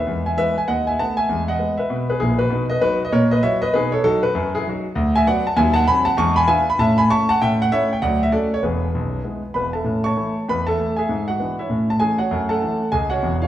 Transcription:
Already playing: B4 E5
0.07 E2 G#3
0.26 E5 G#5
0.37 E3 G#3 B3 B4 E5
0.58 G#5
0.68 D#2 D#5 F#5
0.87 E5 G#5
0.99 A3 B3 F#5 A5
1.17 E5 G#5
1.29 E2 G#3
1.48 D#5 F#5
1.59 G#3 B3
1.78 B4 E5
1.90 B2
2.10 G#4 B4
2.20 A#1 A#2 E4 G#4
2.39 F#4 B4
2.50 B2 D#4
2.70 B4 D#5
2.81 F#3 B3 D#4 F#4 B4
3.05 D#5
3.12 A#2 A#4 C#5
3.31 B4 D#5
3.42 F#3 E4 F#4 C#5 E5
3.62 B4 D#5
3.74 B2 D#4 G#4 B4
3.92 A4 C#5
4.04 F#3 D#4 F#4 A4
4.23 F#4 B4
4.35 F#2
4.55 E4 G#4
4.67 F#3 D#4 F#4
4.95 D2
5.16 E5 G#5
5.27 F#3 B3 F#4 D5 F#5
5.47 A5
5.56 D#2 F#3 E5 G#5
5.74 F#5 A5
5.88 F#3 C4 F#4 G#5 B5
6.05 F#5 A5
6.17 E2 G#3 A5 C#6
6.36 G#5 B5
6.47 B3 D4 F4 E5 G#5
6.70 B5
6.79 A2 C#4 E5 A5
6.98 G#5 B5
7.10 A3 C#4 E4 A5 C#6
7.29 F#5 A5
7.42 A2 C#4 E5 G5
7.62 F#5
7.72 A3 C#4 E4 C#5 E5
7.93 G5
8.02 D2 F#3 D5 F#5
8.23 E5
8.32 A3 C#4 F#4 A4 D5
8.54 C#5
8.63 E1 E2 G#4 B4
8.95 B0 B1
9.24 G#3 B3 E4
9.54 E1 E2 B4 B5
9.73 A4 E5 A5
9.84 A2 C#4
10.04 C#5 A5 C#6
10.17 E3 A3 E4
10.48 E2 B4 B5
10.67 A4 E5 A5
10.78 E3 A3 E4
10.96 G#4 E5 G#5
11.09 G#2
11.28 F#4 F#5
11.39 E3 B3 D4
11.59 E4 C#5 E5
11.70 A2 C#4
11.90 A5
12.00 E3 A3 C#4 G#4 G#5
12.18 F#4 C#5 F#5
12.31 F#2 A3
12.49 A4 F#5 A5
12.62 E3 A3 C#4
12.92 C#2 G#4 G#5
13.10 F#4 C#5 F#5
13.22 E1 E2
13.42 F4 C#5 F5

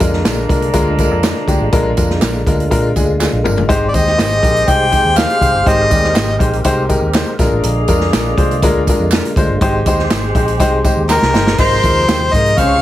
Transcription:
Already playing: D3 F3 G#3 A#3 D4 A#4
0.00 F2 G#3 D4 F4 A#4, kick, closed hi-hat, tambourine
0.13 snare
0.25 A#1 G#3 D4 F4 A#4, snare, clap, closed hi-hat, tambourine
0.49 C2 G#3 D4 F4 A#4, kick, closed hi-hat, tambourine
0.62 closed hi-hat
0.73 D2 G#3 D4 F4 A#4, kick, closed hi-hat, tambourine
0.98 G#3 D4 F4 A#4, kick, closed hi-hat, tambourine
1.11 F2
1.23 G#3 D4 F4 A#4, snare, clap, closed hi-hat, tambourine
1.48 D2 G#3 D4 F4 G4, kick, closed hi-hat, tambourine
1.60 A1
1.72 A#1 G#3 D4 F4 A#4, kick, closed hi-hat, tambourine
1.97 F2 G#3 D4 F4 A#4, kick, closed hi-hat, tambourine
2.10 snare
2.21 A#1 G#3 D4 F4 A#4, snare, clap, closed hi-hat, tambourine
2.47 D2 G#3 D4 F4 A#4, kick, closed hi-hat, tambourine
2.60 closed hi-hat
2.71 A#2 G#3 D4 F4 A#4, kick, closed hi-hat, tambourine
2.96 D2 G#3 D4 F4 G#4, kick, closed hi-hat, tambourine
3.19 G#3 D4 F4 G#4, snare, clap, tambourine
3.33 A#1
3.44 G1 G#3 D4 F4 A#4, mid tom, tambourine
3.58 floor tom
3.68 G#1 G#3 C4 D#4 G4 C5, kick, closed hi-hat, tambourine
3.88 D5
3.93 D#2 G#3 D#4 G4 C5 D#5, kick, closed hi-hat, tambourine
4.07 snare
4.18 G#1 G#3 D#4 G4 C5, snare, clap, closed hi-hat, tambourine
4.42 A#1 G#3 D#4 G4 A#4, kick, closed hi-hat
4.56 closed hi-hat
4.68 C2 G#3 D#4 G4 D#5 G5, kick, closed hi-hat, tambourine
4.91 G#3 D#4 G4 C5, kick, closed hi-hat, tambourine
5.05 D#2
5.16 G#3 D#4 G4 C5 F5, snare, clap, closed hi-hat, tambourine
5.30 closed hi-hat
5.41 C2 G#3 D#4 G4 C5, kick, closed hi-hat, tambourine
5.54 G1
5.66 G#1 G#3 D#4 G4 A#4 C5 D#5, kick, closed hi-hat
5.90 D#2 G#3 D#4 G4 D5, kick, closed hi-hat, tambourine
6.04 snare
6.15 G#1 G#3 D#4 G4 C5, snare, clap, closed hi-hat, tambourine
6.39 A#1 G#3 D#4 G4 C5, kick, closed hi-hat
6.53 closed hi-hat
6.64 C2 G#3 D#4 G4 C5, kick, closed hi-hat, tambourine
6.89 G#3 D#4 G4 A#4, kick, closed hi-hat, tambourine
7.02 D#2
7.14 G#3 D#4 G4 C5, snare, clap, closed hi-hat, tambourine
7.39 A#1 D3 G#3 A#3 D4 F4 G#4 A#4 D5, kick, snare, closed hi-hat, tambourine
7.51 A1
7.63 A#1, closed hi-hat
7.88 F2 G#3 D4 F4 A#4, kick, closed hi-hat, tambourine
8.01 snare
8.13 A#1 G#3 D4 F4 A#4, snare, clap, closed hi-hat, tambourine
8.37 C2 G#3 D4 F4 C5, kick, closed hi-hat
8.51 closed hi-hat
8.62 D2 G#3 D4 F4 A#4, kick, closed hi-hat, tambourine
8.87 G#3 D4 F4 A#4, kick, closed hi-hat, tambourine
9.00 F2
9.11 G#3 D4 F4 A#4, snare, clap, closed hi-hat, tambourine
9.25 closed hi-hat
9.36 D2 G#3 D4 F4 C5, kick, closed hi-hat, tambourine
9.49 G1
9.61 G#1 G#3 C4 D#4 G4 C5, kick, closed hi-hat
9.86 D#2 G#3 D#4 G4 C5, kick, closed hi-hat, tambourine
9.99 snare
10.11 G#1 G#3 D#4 G4 C5, snare, clap, closed hi-hat, tambourine
10.35 A#1 G#3 D#4 G4 C5, kick, closed hi-hat
10.48 closed hi-hat
10.59 C2 G#3 D#4 G4 C5, kick, closed hi-hat, tambourine
10.84 G#3 D#4 G4 C5, kick, closed hi-hat, tambourine
10.97 D#2
11.09 G#3 D#4 G4 A#4 C5, snare, clap, tambourine
11.22 C2, snare
11.34 G1 G#3 D#4 G4 C5, snare, tambourine
11.47 snare
11.58 G#1 C3 F3 G#3 A#3 D#4 F4 G#4 A#4 C5 C6, kick, crash, tambourine
11.83 D#2 G#3 D#4 F4 A#4, kick, closed hi-hat, tambourine
12.09 D#2 G#3 C4 D#4 F4 G4 C5, snare, clap, closed hi-hat, tambourine
12.33 G#2 G#3 A#3 D#4 F4 A#4 C5 D#5, kick, closed hi-hat, tambourine
12.46 closed hi-hat
12.57 C#2 C#3 G#3 C#4 F4 G#4 C5 C#5 F5 C#6, kick, closed hi-hat, tambourine
12.61 G#3

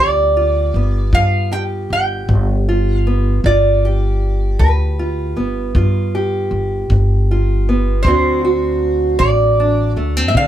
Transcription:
Already playing: D2 G2 G3 B3 F4 G4
0.00 D5
0.37 F4
0.74 G1 B3
1.12 G2 F4 F5, kick
1.51 G4 G5
1.90 G1 G5
2.28 G1 G2, kick
2.69 F4
2.98 F5
3.07 B3
3.44 G1 G2 F4 D5, kick
3.85 G4
4.59 D2 G2 B4, kick
4.99 F4
5.36 G1 B3
5.75 G2 F4, kick
6.15 G4
6.51 G1
6.90 G1 G2, kick
7.31 F4
7.69 B3
8.03 D2 D3 F#3 C5, kick
8.07 C4 D4 F#4
8.45 F#4
9.19 A1 D3 D5, kick
9.60 D4
9.96 D2 A3
10.17 C4
10.28 E5
10.35 D3 D4 F5, kick

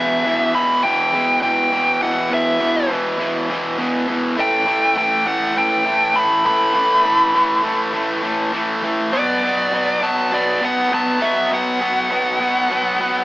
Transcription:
Already playing: E2 B2 E3 E5
0.25 E2 B2 E3
0.54 E2 B2 E3 B5
0.83 E2 B2 E3 G5
1.13 E2 B2 E3
1.42 E2 B2 E3 G5
1.71 E2 B2 E3
2.01 E2 B2 E3 F#5
2.30 E2 B2 E3 E5
2.60 E2 B2 E3
2.89 E2 B2 E3
3.18 E2 B2 E3
3.49 E2 B2 E3
3.77 E2 B2 E3
4.07 E2 B2 E3
4.37 A2 E3 A3 G5
4.66 A2 E3 A3
4.96 A2 E3 A3 G5
5.25 A2 E3 A3 F#5
5.55 A2 E3 A3 G5
5.85 A2 E3 A3
6.15 A2 E3 A3 B5
6.45 A2 E3 A3 B5
6.74 A2 E3 A3
7.04 A2 E3 A3
7.34 A2 E3 A3
7.63 A2 E3 A3
7.93 A2 E3 A3
8.23 A2 E3 A3
8.53 A2 E3 A3
8.83 A2 E3 A3
9.13 B2 F#3 B3 D5
9.42 B2 F#3 B3
9.72 B2 F#3 B3
10.02 B2 F#3 B3 A5
10.32 B2 F#3 B3 D5
10.61 B2 F#3 B3 F#5
10.91 B2 F#3 B3 A5
11.21 B2 F#3 B3 E5
11.51 B2 F#3 B3 F#5
11.81 B2 F#3 B3
12.10 B2 F#3 B3
12.40 B2 F#3 B3
12.70 B2 F#3 B3
12.99 B2 F#3 B3

